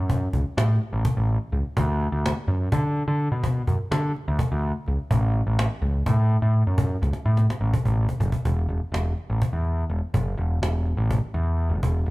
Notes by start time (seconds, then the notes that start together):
Already playing: F#2
0.10 cajon bass
0.33 C#2, cajon bass
0.57 A2, cajon slap
0.81 cajon slap
0.93 A1
1.05 cajon bass
1.17 A1
1.29 cajon slap
1.52 C#2, cajon slap
1.77 D2, cajon bass
2.01 cajon slap
2.12 D2
2.26 cajon slap
2.48 F#2, cajon slap
2.72 D3, cajon bass
2.96 cajon slap
3.08 D3
3.20 cajon slap
3.32 B2
3.44 cajon bass
3.67 F#2, cajon bass
3.91 D3, cajon slap
4.15 cajon slap
4.28 D2
4.39 cajon bass
4.52 D2
4.62 cajon slap
4.86 C#2, cajon slap
5.11 A1, cajon bass
5.34 cajon slap
5.47 A1
5.59 cajon slap
5.82 C#2, cajon slap
6.06 A2, cajon bass
6.30 cajon slap
6.42 A2
6.54 cajon slap
6.67 F#2
6.78 cajon bass
7.02 C#2, cajon slap
7.13 cajon slap
7.25 A2, cajon slap
7.37 cajon slap
7.50 cajon slap
7.61 A1
7.74 cajon bass
7.85 A1, cajon bass
7.97 cajon slap
8.09 cajon bass
8.20 F#1, cajon bass
8.32 cajon bass
8.45 E1, cajon bass
8.69 E1, cajon slap
8.92 E1, cajon slap
9.17 cajon slap
9.30 A1
9.42 cajon bass
9.53 E2
9.65 cajon slap
9.90 E1, cajon slap
10.14 F#1, cajon bass
10.37 E1, cajon slap
10.62 E1, cajon slap
10.87 cajon slap
10.97 A1
11.11 cajon bass
11.34 E2, cajon slap
11.59 cajon slap
11.70 F#1
11.83 E1, cajon bass
12.06 E1, cajon slap